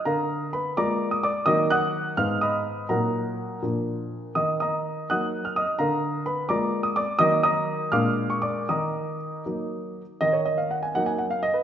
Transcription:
<<
  \new Staff \with { instrumentName = "Grand piano" } { \time 6/8 \key ees \minor \tempo 4. = 83 <bes' f'' bes''>4 <ces'' ces'''>8 <d'' bes'' d'''>8. ees'''16 <d'' d'''>8 | <ees'' ees'''>8 <ges'' ees''' ges'''>4 <f'' f'''>8 <ees'' ces''' ees'''>4 | <bes' ges'' bes''>4. r4. | <ees'' ees'''>8 <ees'' bes'' ees'''>4 <ges'' ees''' ges'''>8. f'''16 <ees'' ees'''>8 |
<bes' f'' bes''>4 <ces'' ces'''>8 <d'' bes'' d'''>8. ees'''16 <d'' d'''>8 | <ees'' ees'''>8 <ees'' bes'' ees'''>4 <f'' d''' f'''>8. des'''16 <d'' d'''>8 | <ees'' bes'' ees'''>4. r4. | ees''16 des''16 ees''16 f''16 ges''16 aes''16 ges''16 aes''16 ges''16 f''16 ees''16 ces''16 | }
  \new Staff \with { instrumentName = "Grand piano" } { \time 6/8 \key ees \minor d4. <aes bes f'>4. | <ees ges bes ees'>4. <aes, aes ces' ees'>4. | <bes, ges bes ees'>4. <bes, f bes d'>4. | ees4. <ges bes ees'>4. |
d4. <aes bes f'>4. | <ees ges bes ees'>4. <bes, aes bes d'>4. | ees4. <ges bes ees'>4. | ees4. <ges bes ees'>4. | }
>>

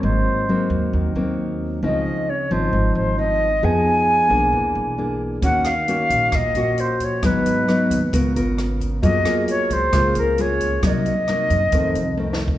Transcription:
<<
  \new Staff \with { instrumentName = "Flute" } { \time 4/4 \key aes \mixolydian \tempo 4 = 133 c''2 r2 | ees''4 des''8 c''4 c''8 ees''4 | aes''2.~ aes''8 r8 | ges''8 f''4. ees''4 c''8 des''8 |
ces''2 r2 | ees''4 des''8 c''4 bes'8 des''4 | ees''2.~ ees''8 r8 | }
  \new Staff \with { instrumentName = "Nylon-string guitar" } { \time 4/4 \key aes \mixolydian << { <ges bes c'>4 <ges bes c'>4. <ges bes c'>4. | <f c' ees'>4 r8 <f c' ees'>4. <f c' ees'>8 r8 | <ces' ees' aes'>4. <bes d' aes'>4. <ais d' gis'>4 | <bes des' ges'>8 r8 <bes des' ges'>4 r8 <bes des' ges'>4. |
<ges ces' ees'>4 <ges ces' ees'>8 r8 <ces' f' bes'>8 <ces' f' bes'>4. | <bes f' aes'>8 <bes f' aes'>4. <bes f' aes'>4 <bes f' aes'>4 | <ges bes ees'>8 r8 <ges bes ees'>8 r8 <ees a c'>8 r8 <ees a c'>4 | } \\ { aes,2 ees2 | des2 aes,2 | f2 e2 | ees2 bes,2 |
aes,2 des2 | ges2 des2 | c2 f,2 | } >> }
  \new Staff \with { instrumentName = "Upright bass" } { \clef bass \time 4/4 \key aes \mixolydian aes,,8 r4 ees,8 ees,8 ees,4. | des,8 r4 aes,,8 aes,,8 aes,,4. | f,8 r4 ces,8 e,8 b,,4. | ees,8 r4 bes,,8 bes,,8 bes,,4. |
aes,,8 r4 ees,8 des,8 aes,,4. | ges,8 r4 des,8 des,8 des,4. | c,8 r4 ges,8 f,8 c,4. | }
  \new DrumStaff \with { instrumentName = "Drums" } \drummode { \time 4/4 r4 r4 r4 r4 | r4 r4 r4 r4 | r4 r4 r4 r4 | <hh bd>8 <hh ss>8 hh8 <hh bd>8 <hh bd ss>8 hh8 hh8 <hh bd>8 |
<hh bd ss>8 hh8 <hh ss>8 <hh bd>8 <hh bd>8 hh8 <hh ss>8 <hh bd>8 | <hh bd>8 <hh ss>8 hh8 <hh bd>8 <hh bd ss>8 hh8 hh8 <hh bd>8 | <hh bd ss>8 hh8 <hh ss>8 <hh bd>8 <hh bd>8 hh8 \tuplet 3/2 { tommh8 sn8 bd8 } | }
>>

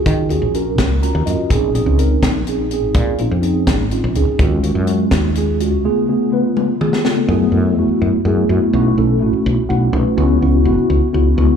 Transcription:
<<
  \new Staff \with { instrumentName = "Tine electric piano" } { \time 6/8 \key ees \dorian \tempo 4. = 83 <des' f' ges' aes'>8 <des' f' ges' aes'>8 <des' f' ges' bes'>4 <des' f' ges' bes' bes''>8 <des' f' ges' bes' ees''>8 | <c' des' ees' aes'>8 <c' des' ees' aes'>8 <c' des' ees' bes'>4 <c' des' ees' aes'>8 <c' des' ees' aes'>8~ | <c' des' ees' aes'>8 <c' des' ees' f'>8 <c' des' ees' aes'>4 <c' des' ees' f'>8 <c' des' ees' aes'>8 | <aes des' f' ges'>8 <aes des' f' ges'>8 <aes des' f' ges'>4 <aes des' f' aes'>8 <aes des' f' ges'>8 |
<des a ces' f' aes'>8 <des a ces' f' aes'>8 <des a ces' f' ces''>4 <des a ces' f' aes'>8 <des a ces' f' a'>8 | \key fis \minor <a b e' gis'>8 <a b e' a'>8 <a b e' fis'>4 <a b e' gis'>8 <a b e' fis'>8 | <a cis' e' fis'>8 <a cis' e' a'>8 <a cis' e' fis'>4 <a cis' e' fis' fis''>8 <a cis' e' fis' b'>8 | <b cis' e' fis'>8 <b cis' e' fis'>8 <b cis' e' fis'>4 <b cis' e' fis'>8 <b cis' e' fis'>8 | }
  \new Staff \with { instrumentName = "Fretless electric bass" } { \clef bass \time 6/8 \key ees \dorian ees8 ees,16 bes,,8. des,8. ees,16 ges,16 r16 | bes,,8 bes,,16 des,8. bes,,4~ bes,,16 aes,,16 | bes,8 bes,,16 f,8. aes,,8. bes,,16 des,16 r16 | ees,8 ees,16 ges,8. ees,4~ ees,16 des,16 |
r2. | \key fis \minor fis,8 fis,8 e,16 r16 fis,16 r16 fis,8 fis,16 r16 | b,,8 b,,8 a,,16 r16 b,,16 r16 b,,8 b,,16 r16 | cis,8 cis,8 fis,,16 r16 cis,16 r16 cis,8 cis,16 r16 | }
  \new DrumStaff \with { instrumentName = "Drums" } \drummode { \time 6/8 <hh bd>8 hh8 hh8 <hh bd sn>8 hh8 hh8 | <hh bd>8 hh8 hh8 <hh bd sn>8 hh8 hh8 | <hh bd>8 hh8 hh8 <hh bd sn>8 hh8 hh8 | <hh bd>8 hh8 hh8 <hh bd sn>8 hh8 hh8 |
r4. tommh8 toml16 sn16 sn8 | r4. r4. | r4. r4. | r4. r4. | }
>>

